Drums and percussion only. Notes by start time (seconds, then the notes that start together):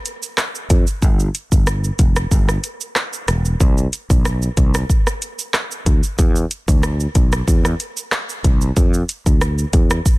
0.06 closed hi-hat, shaker
0.23 shaker
0.38 cross-stick, clap, shaker
0.55 shaker
0.70 kick, closed hi-hat, shaker
0.87 shaker
1.02 kick, shaker
1.20 shaker
1.35 closed hi-hat, shaker
1.52 kick, shaker
1.67 cross-stick, shaker
1.84 shaker
1.99 kick, closed hi-hat, shaker
2.16 cross-stick, shaker
2.31 kick, shaker
2.49 cross-stick, shaker
2.64 closed hi-hat, shaker
2.81 shaker
2.96 cross-stick, clap, shaker
3.13 shaker
3.28 cross-stick, closed hi-hat, shaker
3.45 shaker
3.60 kick, shaker
3.78 shaker
3.93 closed hi-hat, shaker
4.10 kick, shaker
4.25 cross-stick, shaker
4.42 shaker
4.57 kick, closed hi-hat, shaker
4.74 cross-stick, shaker
4.90 kick, shaker
5.07 cross-stick, shaker
5.22 closed hi-hat, shaker
5.39 shaker
5.54 cross-stick, clap, shaker
5.71 shaker
5.86 kick, closed hi-hat, shaker
6.03 shaker
6.19 kick, shaker
6.36 shaker
6.51 closed hi-hat, shaker
6.68 kick, shaker
6.83 cross-stick, shaker
7.00 shaker
7.15 kick, closed hi-hat, shaker
7.32 cross-stick, shaker
7.48 kick, shaker
7.65 cross-stick, shaker
7.80 closed hi-hat, shaker
7.97 shaker
8.12 cross-stick, clap, shaker
8.29 shaker
8.44 kick, closed hi-hat, shaker
8.61 shaker
8.77 kick, shaker
8.94 shaker
9.09 closed hi-hat, shaker
9.26 kick, shaker
9.41 cross-stick, shaker
9.58 shaker
9.73 kick, closed hi-hat, shaker
9.90 cross-stick, shaker
10.06 kick, shaker